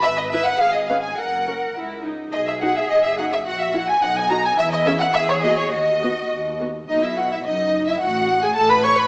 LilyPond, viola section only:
\new Staff \with { instrumentName = "Viola section" } { \time 2/4 \key b \major \tempo 4 = 106 r8 <e' b'>8 r8 <cis' b'>8 | r8 <cis' ais'>8 e'8 dis'8 | r8 <dis' fis'>8 r8 <dis' fis'>8 | r8 <e' fis'>8 r8 <dis' fis'>8 |
r8 <cis' gis'>8 r8 <ais fis'>8 | r8 <b fis'>8 r8 <b fis'>8 | dis'16 e'16 fis'16 e'16 dis'8. e'16 | fis'8. gis'16 a'16 b'16 cis''16 b'16 | }